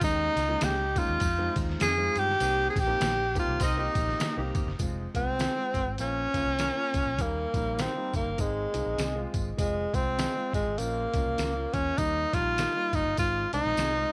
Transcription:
0.01 D#2 G#3 A#3 C#4 D#4, kick, ride, tambourine
0.36 C#2, snare, ride, tambourine
0.49 G#3 A#3 C#4 D#4
0.61 C#2 A#3 C#4 G4 G#4, snare, ride, tambourine
0.96 G#3 A#3 C#4 D#4 F4, kick, ride, tambourine
1.09 D#2
1.20 F2, kick, ride, tambourine
1.38 G#3 C4 D#4 F4
1.56 D#2, kick, ride, tambourine
1.69 snare
1.80 F2 C4 D#4 G#4, snare, ride, tambourine
1.97 G#3 C4 D#4 F4
2.16 G2 G4, ride, tambourine
2.29 snare
2.40 C2 A#3 C4 D#4 G4, ride, tambourine
2.70 G#4
2.76 A#1 G4, kick, snare, ride, tambourine
2.87 A#3 C4 D#4 G4
3.00 A#1 A#3 D#4 G4, snare, ride, tambourine
3.35 A#3 C4 D#4 G4, kick, ride, tambourine
3.39 F4
3.48 C2
3.60 C2 C4 D#4 A#4 D#5, kick, ride, tambourine
3.77 A#3 C4 D#4 G4
3.95 A#1, kick, ride, tambourine
4.09 snare
4.19 A#3 D#4 G4, snare, ride, tambourine
4.37 C2 A#3 C4 D#4 G4
4.55 G1, kick, ride, tambourine
4.66 F#1, snare
4.79 F1 G#3 C4 F4, kick, closed hi-hat, tambourine
5.14 C2 G#3 C4 F4, kick, closed hi-hat, tambourine
5.39 C4 F4 G#4, snare, closed hi-hat, tambourine
5.56 G#3 C4 F4
5.74 G#1, kick, closed hi-hat, tambourine
5.86 G#1
5.98 A#1 A#3 C#4 F4, closed hi-hat, tambourine
6.34 C#2 A#3 C#4 F4, kick, closed hi-hat, tambourine
6.46 C2
6.58 C#4 F4 A#4, snare, closed hi-hat, tambourine
6.75 A#3 C#4 F4
6.94 C#2, kick, closed hi-hat, tambourine
7.06 A#1
7.18 D#2 G3 A#3 D#4, kick, closed hi-hat, tambourine
7.54 A#1 G3 A#3 D#4, kick, closed hi-hat, tambourine
7.78 C4 D#4 G4 A#4, snare, closed hi-hat, tambourine
7.96 G3 A#3 D#4
8.13 G1 A#3, kick, closed hi-hat, tambourine
8.25 G1
8.38 G#1 G#3 C4 D#4, kick, closed hi-hat, tambourine
8.73 C2 G#3 C4 D#4, closed hi-hat, tambourine
8.86 A#1
8.98 C2 C4 D#4 G#4, snare, closed hi-hat, tambourine
9.15 G#3 C4 F4
9.34 G#1, kick, closed hi-hat, tambourine
9.57 F1 G#3 C4 F4, kick, closed hi-hat, tambourine
9.93 C2 G#3 C4 F4, kick, closed hi-hat, tambourine
10.18 C4 F4 G#4, snare, closed hi-hat, tambourine
10.36 G#3 C4 F4
10.53 G#1 G#3, kick, closed hi-hat, tambourine
10.66 G#1
10.78 A#1 A#3 C#4 F4, closed hi-hat, tambourine
11.13 C#2 A#3 C#4 F4, kick, closed hi-hat, tambourine
11.26 C2
11.38 C#2 C#4 F4 A#4, snare, closed hi-hat, tambourine
11.55 A#3 C#4 F4
11.73 E2 C#4, kick, closed hi-hat, tambourine
11.98 D#2 G3 A#3 D#4, kick, closed hi-hat, tambourine
12.33 A#1 G3 A#3 D#4 F4, kick, snare, closed hi-hat, tambourine
12.58 D#4 G4 A#4, snare, closed hi-hat, tambourine
12.76 G3 A#3 D#4
12.93 G1 D#4, kick, closed hi-hat, tambourine
13.05 G1
13.17 G#1 G#3 C4 D#4 F4, kick, closed hi-hat, tambourine
13.53 C2 G#3 C4 D#4, closed hi-hat, tambourine
13.65 A#1, snare
13.77 C2 C4 D#4 G#4, snare, closed hi-hat, tambourine
13.95 G#3 C4 D#4

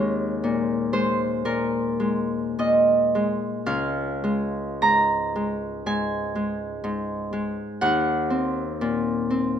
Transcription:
Already playing: D#2 G#3 A#3 C#5 D#5
0.44 A#2
0.93 G#3 C5
1.45 A#2 A#4
2.00 G#3
2.59 A#2 D#5
3.15 G#3
3.66 C#2 F5
4.24 G#3
4.82 G#2 A#5
5.36 G#3
5.86 G#2 G#5
6.35 G#3
6.84 G#2
7.33 G#3
7.81 D#2 F#5
8.30 C4
8.81 A#2
9.30 C4

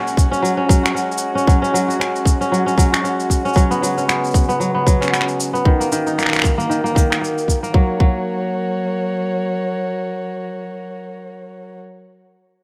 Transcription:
Already playing: F#3 G#3 A#3 C#4 F#4
0.07 cabasa
0.17 kick, cabasa
0.31 C#4, cabasa
0.42 F#3, cabasa
0.57 C#4
0.69 F#3, kick, cabasa
0.83 F#4, finger snap, cabasa
0.95 C#4, cabasa
1.12 cabasa
1.18 cabasa
1.35 C#4, cabasa
1.47 F#3, kick, cabasa
1.62 C#4, cabasa
1.74 F#3, cabasa
1.88 F#4, cabasa
1.99 C#4, finger snap, cabasa
2.16 cabasa
2.25 kick, cabasa
2.41 C#4, cabasa
2.52 F#3, cabasa
2.66 C#4, cabasa
2.78 F#3, kick, cabasa
2.92 F#4, finger snap, cabasa
3.04 C#4, cabasa
3.20 cabasa
3.30 kick, cabasa
3.45 C#4, cabasa
3.48 cabasa
3.53 C#3 F#3 B3, kick, cabasa
3.57 cabasa
3.71 B3, cabasa
3.82 F#3, cabasa
3.98 C#4, cabasa
4.08 B3, finger snap, cabasa
4.24 cabasa
4.26 cabasa
4.31 kick, cabasa
4.35 cabasa
4.44 cabasa
4.49 B3, cabasa
4.60 F#3, cabasa
4.75 B3
4.86 F#3, kick, cabasa
5.01 C#4, finger snap, cabasa
5.08 finger snap
5.13 B3, finger snap, cabasa
5.21 finger snap
5.28 cabasa
5.40 cabasa
5.53 B3, cabasa
5.64 D#3 D#4 A#4, kick
5.80 A#3, cabasa
5.92 D#3, cabasa
6.07 D#4, cabasa
6.18 A#3, finger snap, cabasa
6.23 finger snap
6.26 finger snap
6.29 finger snap
6.33 finger snap, cabasa
6.36 finger snap
6.39 finger snap
6.42 finger snap, kick, cabasa
6.58 A#3, cabasa
6.70 D#3, cabasa
6.84 A#3, cabasa
6.95 D#3, kick, cabasa
7.10 D#4, finger snap, cabasa
7.21 A#3, cabasa
7.38 cabasa
7.48 kick, cabasa
7.63 A#3, cabasa
7.74 F#3 F#4 A#4 C#5, kick
8.00 F#3, kick

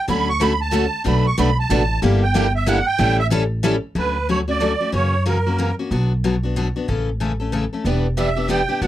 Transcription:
0.08 D2 D3 F#3 A3 C#4 F#4 A4 B5
0.29 C#6
0.40 D3 F#3 A3 C#4 F#4 A4 B5
0.61 A5
0.71 D3 F#3 A3 C#4 F#4 A4
1.04 B1 B2 F#3 A3 D4 F#4 B4 B5
1.26 C#6
1.38 B1 B2 F#3 A3 D4 F#4 B4 B5
1.59 A5
1.70 A1 B2 F#3 A3 D4 F#4 B4
2.02 G1 D3 G3 A#3 E4 G4
2.23 G5
2.34 D3 G3 A#3 E4 G4
2.56 E5
2.66 D3 G3 A#3 E4 G4 F#5
2.87 G5
2.98 A1 E3 G3 C#4 E4 A4
3.20 E5
3.30 E3 G3 C#4 E4 A4
3.63 E3 G3 C#4 E4 A4
3.95 D2 D3 F#3 A3 C#4 F#4 B4
4.29 D3 F#3 A3 C#4 F#4 C#5
4.48 A3 C#4 F#4 D5
4.60 D3 F#3 A3 C#4 F#4
4.80 A3 C#4 F#4
4.92 F#2 C#3 E3 A#3 C#4 F#4 C#5
5.26 C#3 E3 A#3 C#4 F#4 A#4
5.46 A#3 C#4 F#4
5.58 C#3 E3 A#3 C#4 F#4
5.79 A#3 C#4 F#4
5.91 B1 B2 F#3 B3 D4 F#4
6.24 B2 F#3 B3 D4 F#4
6.43 B3 D4 F#4
6.56 B2 F#3 B3 D4 F#4
6.76 B3 D4 F#4
6.88 A1 C#3 E3 A3 C#4 A4
7.20 C#3 E3 A3 C#4 A4
7.40 A3 C#4 A4
7.52 C#3 E3 A3 C#4 A4
7.73 A3 C#4 A4
7.85 E1 E3 G3 B3 D4 E4 G4 B4
8.17 E3 G3 B3 D4 E4 G4 B4 E5
8.36 B3 D4 G4
8.48 E3 G3 B3 D4 E4 G4 B4 G5
8.69 B3 D4 G4
8.82 B1 B2 F#3 B3 D4 F#4 B4 F#5

